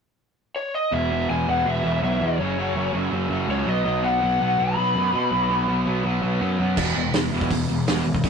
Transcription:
0.56 C#5
0.74 D#5
0.91 E1 E2 B2 E3 E5
1.10 E2 B2 E3
1.29 E1 E2 B2 E3 G#5
1.47 E1 E2 B2 E3 F#5
1.65 E1 E2 B2 E3 E5
1.84 E1 E2 B2 E3
2.01 B1 E2 B2 E3 E5
2.20 E2 B2 E3 C#5
2.39 F#1 F#2 C#3 F#3
2.58 F#2 C#3 F#3
2.75 F#1 F#2 C#3 F#3
2.93 F#1 F#2 C#3 F#3
3.11 F#1 F#2 C#3 F#3
3.29 F#1 F#2 C#3 F#3
3.47 C#2 F#2 C#3 F#3 C#5
3.66 B1 B2 F#3 B3 D#5
3.85 B1 B2 F#3 B3
4.03 B2 F#3 B3 F#5
4.21 B1 B2 F#3 B3
4.40 B1 B2 F#3 B3 F#5
4.58 B1 B2 F#3 B3 B5
4.77 B1 B2 F#3 B3
4.95 F#2 B2 F#3 B3
5.12 B2 F#3 B3
5.31 B1 B2 F#3 B3
5.49 B2 F#3 B3
5.67 B1 B2 F#3 B3
5.86 B1 B2 F#3 B3
6.04 B1 B2 F#3 B3
6.22 B1 B2 F#3 B3
6.41 F#2 B2 F#3 B3
6.59 F#2 B2 F#3 B3
6.77 E1 E2 B2 E3, kick, crash
6.96 E1 E2 B2
7.14 E1 E2 B2, snare, open hi-hat
7.32 E1 E2 B2 E3
7.41 kick
7.51 E1 E2 B2, kick, open hi-hat
7.68 E1 E2 B2
7.87 E1 E2 B2 E3, snare, open hi-hat
8.05 G#1 E2 B2
8.15 kick
8.24 F#1 F#2 C#3 F#3, kick, open hi-hat

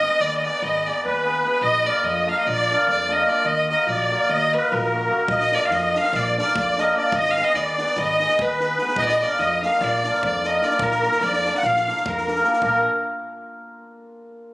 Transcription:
Already playing: D#5
0.02 B3 D#4 G#4 B4
0.20 D#2 D5
0.38 D#5
0.44 B3 D#4 G#4 B4 D5
0.62 G#1 D#5
0.86 B3 D#4 G#4 B4 D5
1.05 D#2 B4
1.25 B3 D#4 G#4 B4
1.44 B3 D#4 G#4 B4
1.61 A#1 D#5
1.84 A#3 D4 F4 A#4 D5
1.88 D5
2.03 F2 D#5
2.26 A#3 D4 F4 A#4 F5
2.32 F5
2.39 D#5
2.45 A#1 D5 D#5
2.53 D5
2.69 A#3 D4 F4 A#4
2.87 F2 D5
2.92 D5
3.08 A#3 D4 F4 A#4 D#5
3.12 D#5
3.26 A#3 D4 F4 A#4 D5
3.44 D#2 D#5
3.68 A#3 D#4 F#4 A#4 D#5
3.87 A#1 D5
3.91 D5
4.10 A#3 D#4 F#4 A#4
4.29 D#2 D#5
4.53 A#3 D#4 F#4 A#4 B4
4.57 B4
4.72 A#1 A#4
4.93 A#3 D#4 F#4 A#4
5.10 A#3 D#4 F#4 A#4
5.28 A#1 D#5, kick
5.40 snare
5.52 A#3 D4 F4 A#4 D5, snare
5.65 F5
5.70 F2 D#5, snare
5.74 D#5
5.94 A#3 D4 F4 A#4 F5, snare
6.00 F5
6.04 snare
6.13 A#1 D5, kick, snare
6.17 D5
6.38 A#3 D4 F4 A#4 D5, snare
6.48 snare
6.55 F2 D5, kick
6.59 D5
6.78 A#3 D4 F4 A#4 D#5, snare
6.94 A#3 D4 F4 A#4 D5
7.12 G#1 D#5, kick
7.25 snare
7.30 F5
7.36 B3 D#4 G#4 B4, snare
7.44 D#5
7.48 D#5
7.54 D#2 D5, snare
7.61 D5
7.78 B3 D#4 G#4 B4, snare
7.87 snare
7.96 G#1 D#5, kick, snare
8.02 D#5
8.20 B3 D#4 G#4 B4, snare
8.29 snare
8.39 D#2 B4, kick
8.60 B3 D#4 G#4 B4, snare
8.79 B3 D#4 G#4, snare
8.83 B4
8.88 snare
8.96 A#1 D#5, kick
9.02 D5
9.09 D#5, snare
9.20 A#3 D4 F4 A#4 D5
9.39 F2 D#5, snare
9.63 A#3 D4 F4 A#4 F5, snare
9.81 A#1 D5, kick, snare
10.04 A#3 D4 F4 A#4, snare
10.14 snare
10.23 F2 D5, kick
10.44 A#3 D4 F4 A#4 D#5, snare
10.48 D#5
10.62 A#3 D4 F4 A#4 D5, snare
10.70 snare
10.79 A#1 A#4, kick
10.91 snare
11.03 A#3 D4 F4 A#4, snare
11.12 snare
11.20 F2 D5, snare
11.25 D5
11.33 snare
11.45 A#3 D4 F4 A#4, snare
11.55 F#5, snare
11.63 A#1 F5, kick, snare
11.76 snare
11.87 A#3 D4 F4 A#4, snare
11.97 snare
12.05 F2 A#4, kick
12.18 snare
12.26 A#3 D4 F4 A#4, snare
12.36 snare
12.43 A#3 D4 F4 A#4, snare
12.53 snare
12.62 A#1 A#3 D4 F4 A#4, kick

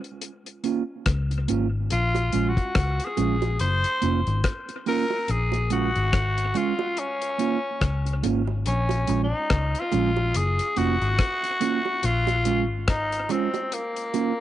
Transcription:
0.04 closed hi-hat
0.22 closed hi-hat
0.46 closed hi-hat
0.64 A#3 C#4 F4, closed hi-hat
1.06 C#2, kick, cross-stick, closed hi-hat
1.31 muted clean electric guitar stroke, closed hi-hat
1.48 G#1 A#3 C#4 F4, closed hi-hat
1.90 A#1 F4, closed hi-hat
2.15 closed hi-hat, high bongo
2.32 A#1 G#3 C#4 F4, closed hi-hat
2.48 F#4
2.57 kick, closed hi-hat
2.75 C#2, kick, cross-stick, closed hi-hat
3.00 closed hi-hat
3.04 G#4
3.17 A#1 G#3 C#4 F4, closed hi-hat, low bongo
3.42 closed hi-hat, high bongo
3.59 F#1 C5, closed hi-hat
3.84 closed hi-hat
4.01 F1 A#3 C#4 F4, closed hi-hat
4.27 G#1, closed hi-hat
4.44 kick, cross-stick, closed hi-hat
4.69 muted clean electric guitar stroke, closed hi-hat
4.86 A#3 C#4 F4 A#4, open hi-hat, low bongo
5.10 high bongo
5.28 A#1 G#4, closed hi-hat
5.52 closed hi-hat, high bongo
5.70 G#3 C#4 F4 F#4, closed hi-hat
5.95 G#1, closed hi-hat
6.13 kick, cross-stick, closed hi-hat
6.38 closed hi-hat
6.54 G#3 C#4 F4, closed hi-hat, low bongo
6.79 high bongo
6.97 C#4, closed hi-hat
7.22 closed hi-hat
7.39 A#3 C#4 F4, closed hi-hat
7.81 C#2, kick, cross-stick, closed hi-hat
8.06 muted clean electric guitar stroke, closed hi-hat
8.23 G#1 A#3 C#4 F4, closed hi-hat, low bongo
8.47 high bongo
8.66 A#1 C#4, closed hi-hat
8.89 closed hi-hat, high bongo
9.07 A#1 G#3 C#4 F4, closed hi-hat
9.24 D#4
9.50 C#2, kick, cross-stick, closed hi-hat
9.75 closed hi-hat
9.80 F4
9.92 A#1 G#3 C#4 F4, closed hi-hat, low bongo
10.17 high bongo
10.34 F#1 G#4, closed hi-hat
10.59 closed hi-hat
10.76 F1 A#3 C#4 F4 F#4, closed hi-hat
11.02 G#1, closed hi-hat
11.18 kick, cross-stick, closed hi-hat
11.43 muted clean electric guitar stroke, closed hi-hat
11.60 A#3 C#4 F4, closed hi-hat, low bongo
11.85 high bongo
12.03 A#1 F4, closed hi-hat
12.27 closed hi-hat, high bongo
12.45 G#3 C#4 F4, closed hi-hat, high bongo
12.70 G#1
12.88 D#4, kick, cross-stick, closed hi-hat
13.12 closed hi-hat
13.29 G#3 C4 C#4 F4, closed hi-hat, low bongo
13.54 closed hi-hat, high bongo
13.72 A#3, closed hi-hat
13.96 closed hi-hat
14.14 A#3 C#4 F4, closed hi-hat, high bongo

